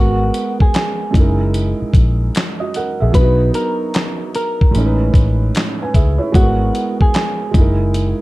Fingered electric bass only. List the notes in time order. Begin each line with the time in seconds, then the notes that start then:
Already playing: G#1
1.15 F#1
1.82 muted fingered electric bass stroke
1.94 A#1
3.02 A#1
3.15 B1
4.76 A1
5.14 A1
5.95 C#2
6.35 G#1
7.55 F#1